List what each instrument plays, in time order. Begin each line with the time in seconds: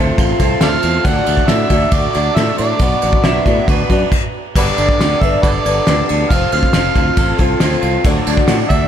Already playing: clean electric guitar F2 A3 C4 A4, tonewheel organ F4 C5 A5 C6, twelve-string acoustic guitar A4
0.00 twelve-string acoustic guitar C4 F4
0.18 fingered electric bass A1, clean electric guitar F4, kick, crash
0.39 fingered electric bass C2, twelve-string acoustic guitar C4 F4 A4, kick, crash
0.61 fingered electric bass D2, twelve-string acoustic guitar F3 C4 F4 A4, clean electric guitar A3, harmonica A4 D5 F5, snare, crash
0.72 snare
0.82 fingered electric bass E2, clean electric guitar C4, crash
1.05 fingered electric bass D2, twelve-string acoustic guitar D3 F#3 A3 D4 F#4, tonewheel organ F#4 D5 D6, harmonica F#5, kick, crash
1.26 fingered electric bass D2, clean electric guitar A3, crash
1.37 kick, snare
1.48 fingered electric bass A2, twelve-string acoustic guitar F#3 A3 D4 F#4, harmonica E5, snare, crash
1.70 fingered electric bass D2, twelve-string acoustic guitar A3 D4 F#4, kick, crash
1.91 fingered electric bass D2, clean electric guitar F#4, harmonica D5, kick, crash
2.14 fingered electric bass D2, twelve-string acoustic guitar A3 D4 F#4, crash
2.36 fingered electric bass A2, twelve-string acoustic guitar F#3 A3 D4 F#4, harmonica E5, snare, crash
2.47 snare
2.58 fingered electric bass A2, clean electric guitar D4, harmonica D5, crash
2.79 fingered electric bass B1, twelve-string acoustic guitar B2 F#3 B3 D4 F#4, tonewheel organ F#4 B5, kick, crash
3.02 fingered electric bass A1, clean electric guitar B3, crash
3.13 kick
3.23 fingered electric bass B1, twelve-string acoustic guitar F#3 B3 D4 F#4, electric slide guitar E5, snare, crash
3.46 fingered electric bass A2, twelve-string acoustic guitar B3 D4 F#4, kick, crash
3.68 fingered electric bass D2, clean electric guitar F#4, electric slide guitar B4, kick, crash
3.90 fingered electric bass F#2, twelve-string acoustic guitar B3 D4 F#4, kick, crash
4.12 kick, crash
4.55 fingered electric bass G1, twelve-string acoustic guitar G3 B3 D4 A4, harmonica F#4 B4 D5, tonewheel organ G4 B4 A5 D6, kick, crash
4.78 fingered electric bass G1, clean electric guitar D4, crash
4.89 kick, snare
4.99 fingered electric bass D2, twelve-string acoustic guitar G3 B3 D4 A4, snare, crash
5.21 fingered electric bass G1, twelve-string acoustic guitar B3 D4 A4, harmonica E5, kick, crash
5.42 fingered electric bass G1, harmonica F#4 B4 D5, clean electric guitar A4, kick, crash
5.65 fingered electric bass G1, twelve-string acoustic guitar B3 D4 A4, crash
5.86 fingered electric bass D2, twelve-string acoustic guitar G3 B3 D4 A4, snare, crash
6.09 fingered electric bass D2, clean electric guitar B3, crash
6.29 fingered electric bass F1, twelve-string acoustic guitar F3 C4 F4 A4, tonewheel organ F4 C5 C6, harmonica F5, kick, crash
6.52 fingered electric bass D2, clean electric guitar C4, harmonica F5, crash
6.63 kick, snare
6.73 fingered electric bass F1, twelve-string acoustic guitar F3 C4 F4 A4, snare, crash
6.95 fingered electric bass D2, twelve-string acoustic guitar C4 F4 A4, kick, crash
7.17 fingered electric bass A1, clean electric guitar A4, kick, crash
7.38 fingered electric bass C2, twelve-string acoustic guitar C4 F4 A4, kick, crash
7.60 fingered electric bass D2, twelve-string acoustic guitar F3 C4 F4 A4, snare, crash
7.71 snare
7.82 fingered electric bass C2, clean electric guitar F4, crash
8.04 fingered electric bass D2, twelve-string acoustic guitar D3 F#3 A3 D4 F#4, tonewheel organ F#4 D5 D6, kick, crash
8.27 fingered electric bass D2, clean electric guitar D4, crash
8.37 kick, snare
8.47 fingered electric bass A2, twelve-string acoustic guitar F#3 A3 D4 F#4, snare, crash
8.69 fingered electric bass D2, twelve-string acoustic guitar A3 D4 F#4, harmonica E5, kick, crash